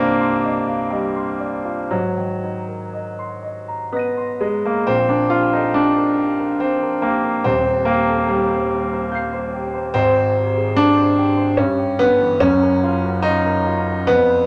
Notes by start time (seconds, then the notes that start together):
Already playing: C2 G2 A#3 C4 D4 D#4 F4 D5
0.21 C6
0.44 D#5
0.68 F5
0.90 G3 D#5
1.16 C6
1.40 D5
1.65 F4
1.91 G#2 F#3
2.17 D#3
2.44 D#4
2.68 A#4
2.93 D#5
3.19 C6
3.43 D#5
3.68 A#5
3.92 B3 D#5 D#6 A#6
3.99 D#7
4.17 C6
4.41 G#3 D#5
4.65 A#3 A#4
4.86 A#1 A#2 C4
5.09 D4 A#4
5.30 F4 G4
5.53 D#4 A4
5.74 D4 G4
5.97 A#4
6.18 G4
6.39 A#4
6.60 C4 F5
6.82 A#4
7.02 A#3 G4
7.24 A#4
7.44 D#1 D#2 C4
7.66 C5
7.85 A#3 G4
8.08 A4
8.28 G3 G4
8.50 C5
8.73 G4
8.93 C5
9.12 F5 G6 C7
9.33 C5
9.54 G4
9.74 C5
9.94 G#1 G#2 C4
10.17 C5
10.37 G4
10.58 G#4
10.76 D4 G4
10.97 C5
11.18 G4
11.37 C5
11.57 G2 C#4
11.79 G4
11.99 D3 B3
12.20 E3
12.40 F#1 F#2 C#4
12.62 A#4
12.83 F4
13.04 F#4
13.22 D#4 F4
13.45 A#4
13.66 F4
13.87 A#4
14.07 F2 B3
14.29 C5